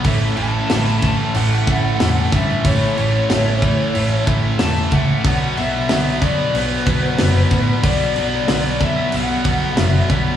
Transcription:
0.04 A1 A2 E3 A3 C#4 E4, kick, crash
0.37 A1 A2 E3 A3 A5, crash
0.69 A1 A2 E3 A3, snare, crash
1.02 A2 E3 A3 A5, kick, crash
1.35 A1 A2 E3 A3 F#5, crash
1.67 A1 A2 E3 A3, kick, crash
2.00 E1 A2 E3 A3, snare, crash
2.32 G2 A2 E3 A3 E5, kick, crash
2.65 A1 A2 E3 A3 C#4 E4 C#5, kick, crash
2.97 A1 A2 E3 A3 C#5, crash
3.30 A1 A2 E3 A3, snare, crash
3.62 A2 E3 A3, kick, crash
3.94 A1 A2 E3 A3, crash
4.27 A1 A2 E3 A3, kick, crash
4.59 E1 A2 E3 A3 A5, snare, crash
4.91 C#2 A2 E3 A3 F#5, kick, crash
5.24 B1 B2 F#3 B3 D4 F#4, kick, crash
5.57 B1 B2 F#3 B3 E5, crash
5.89 B1 B2 F#3 B3, snare, crash
6.21 B2 F#3 B3 D5, kick, crash
6.55 B1 B2 F#3 B3 B4, crash
6.87 B1 B2 F#3 B3, kick, crash
7.18 F#1 B2 F#3 B3, snare, crash
7.51 A2 B2 F#3 B3, kick, crash
7.83 B1 B2 F#3 B3 D4 F#4 D5, kick, crash
8.16 B1 B2 F#3 B3, crash
8.47 B1 B2 F#3 B3, snare, crash
8.80 B2 F#3 B3 E5, kick, crash
9.12 B1 B2 F#3 B3 F#5, crash
9.44 B1 B2 F#3 B3, kick, crash
9.77 F#1 B2 F#3 B3 E5, snare, crash
10.10 B1 B2 F#3 B3, kick, crash

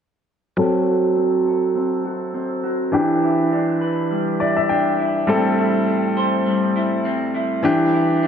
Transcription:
0.57 F#3 C4 A4
0.87 F#4
1.16 C4
1.46 A4
1.75 C4
2.05 F#4
2.34 C4
2.64 F#4
2.92 E3 D4 G4
3.23 E4
3.52 D4
3.81 B4
4.11 G3
4.40 E4 D5
4.56 E5
4.69 D4 G5
4.99 E4
5.27 A2 G3 C4 A4
5.58 E4
5.87 C4
6.17 C5
6.46 G3
6.76 E4
7.05 C4
7.34 E4
7.63 E3 D4 G4
7.93 E4
8.23 D4

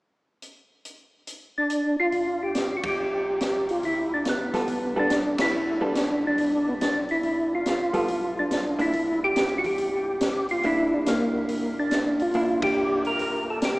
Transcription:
0.42 closed hi-hat
0.85 closed hi-hat
1.27 closed hi-hat
1.58 D4
1.70 closed hi-hat
2.00 F4
2.12 G1, kick, open hi-hat
2.43 G4
2.55 snare, closed hi-hat
2.77 F#4
2.83 G1 G4, kick, ride
2.98 B1
3.41 snare, closed hi-hat
3.69 F4, open hi-hat
3.83 D2 E4, kick, open hi-hat
4.14 D4
4.25 snare, closed hi-hat
4.29 B3
4.54 D2 G3 B3 F4 A4, snare, open hi-hat
4.68 B1, kick, open hi-hat
4.96 G3 B3 D4 F4 A4
5.10 snare, closed hi-hat
5.38 B1 E4, snare, ride
5.52 G1
5.81 G3 B3 D4 F4 A4
5.95 snare, closed hi-hat
6.27 D4
6.38 B1, kick, open hi-hat
6.68 B3
6.81 D4, snare, closed hi-hat
7.09 E4, open hi-hat
7.23 G1, kick, open hi-hat
7.55 F4
7.66 snare, closed hi-hat
7.93 G1 G3 B3 F4 A4, open hi-hat
8.08 B1, kick, open hi-hat
8.39 D4
8.51 snare, closed hi-hat
8.79 A#3 D4 E4, open hi-hat
8.93 C2, kick, open hi-hat
9.24 G4
9.36 snare, closed hi-hat
9.58 F#4
9.64 G4, kick, open hi-hat
9.78 G1, kick, open hi-hat
10.21 snare, closed hi-hat
10.49 F4, open hi-hat
10.63 C2 A#3 D4 E4, kick, open hi-hat
10.94 D4
11.06 A#3, snare, closed hi-hat
11.49 G1, kick, open hi-hat
11.80 D4
11.91 snare, closed hi-hat
12.19 G1 F4, open hi-hat
12.34 C2 A#3 D4 E4, kick, open hi-hat
12.62 G4, kick, ride
13.05 A#4, open hi-hat
13.19 G1 A#4, kick, open hi-hat
13.50 A4
13.62 G4, snare, closed hi-hat

